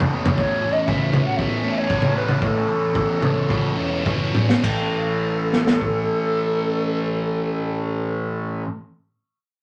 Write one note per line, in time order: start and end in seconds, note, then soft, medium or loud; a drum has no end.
0.00 0.30 A1 medium
0.00 0.15 A2 medium
0.00 0.61 E3 medium
0.00 0.12 B3 medium
0.00 0.91 C#4 medium
0.00 4.60 C#4 medium
0.00 1.89 E4 medium
0.00 4.59 A4 medium
0.00 4.59 C#5 medium
0.00 floor tom medium
0.00 mid tom medium
0.12 0.87 B3 medium
0.26 floor tom medium
0.26 mid tom medium
0.37 0.58 A1 medium
0.37 2.19 A2 medium
0.37 0.74 C#5 medium
0.37 kick medium
0.62 1.12 E3 medium
0.73 0.88 D#5 medium
0.86 1.18 C#2 medium
0.86 1.38 B3 medium
0.86 1.24 E5 medium
0.86 kick medium
1.12 2.67 E3 medium
1.12 mid tom medium
1.25 1.56 A1 medium
1.25 1.38 F#5 medium
1.37 2.14 B3 medium
1.37 1.80 E5 medium
1.37 kick medium
1.63 1.84 A2 medium
1.63 2.94 C#4 medium
1.78 2.19 C#5 medium
1.89 3.21 E4 medium
1.89 kick loud
2.02 2.34 A1 medium
2.02 mid tom medium
2.16 2.92 B3 medium
2.16 2.42 B4 medium
2.28 mid tom medium
2.42 3.77 A2 medium
2.42 2.63 A2 medium
2.42 4.03 A4 medium
2.42 kick medium
2.68 3.20 E3 medium
2.93 3.28 A1 medium
2.93 3.47 B3 medium
2.93 kick medium
3.21 4.63 E3 medium
3.21 mid tom medium
3.35 3.69 C#2 medium
3.48 4.33 B3 medium
3.48 kick medium
3.76 4.02 E1 medium
3.76 4.63 C#4 medium
4.05 4.31 F#1 medium
4.05 4.63 E4 medium
4.05 kick medium
4.33 4.60 G#1 medium
4.33 4.63 B3 medium
4.33 mid tom medium
4.49 snare medium
4.62 8.62 A1 medium
4.62 8.65 A2 medium
4.62 8.68 E3 medium
4.62 8.69 A3 medium
4.62 8.64 C#4 medium
4.62 8.63 A4 soft
4.62 8.64 A4 medium
4.62 8.62 B4 medium
4.62 kick medium
4.62 crash medium
5.53 snare soft
5.67 snare medium
5.81 kick medium